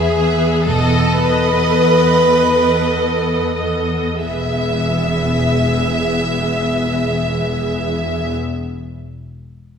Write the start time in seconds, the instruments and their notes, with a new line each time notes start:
Already playing: cello section E2, viola section B3 G#4, violin section G#4 E5
0.17 viola section B3 G#4, violin section E5
0.66 double bass section E1, cello section E2, viola section B3 A4, violin section A4 D#5
1.19 viola section B3 A4, violin section B4 D#5
1.73 cello section E2
2.31 viola section B3 A4, violin section D#5
2.90 cello section E2
3.56 viola section B3 A4, violin section D#5
4.23 double bass section E1, cello section E2, viola section B3 G#4, violin section E5